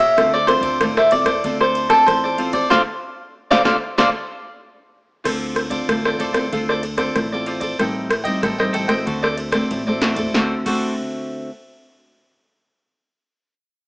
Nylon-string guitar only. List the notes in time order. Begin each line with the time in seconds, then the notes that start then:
Already playing: A#2
0.17 D3 C4 F4 A4
0.48 C4 F4 A4
0.82 A2
1.12 C4 F4 A4
1.44 D3 C4 F4 A4
1.90 C4 F4 A4
2.08 A2
2.38 C4 F4 A4
2.72 D4 F4 A4
3.51 D4 F4 A4
3.65 D4 F4 A4
3.98 D4 F4 A4
5.24 D3 C4 F4 A4
5.70 C4 F4 A4
5.88 A2
6.05 C4 F4 A4
6.34 C4 F4 A4
6.52 D3 C4 F4 A4
6.97 C4 F4 A4
7.16 A2
7.33 C4 F4 A4
7.80 A2 G3 C4 D#4
8.26 G3 C4 D#4
8.44 A2
8.59 G3 C4 D#4
8.89 A3 C4 F#4
9.07 D3
9.53 A3 C4 F#4
9.71 A2
9.87 A3 C4 F#4
10.34 D3 A3 C4 F#4
10.66 D3 A3 C4 F#4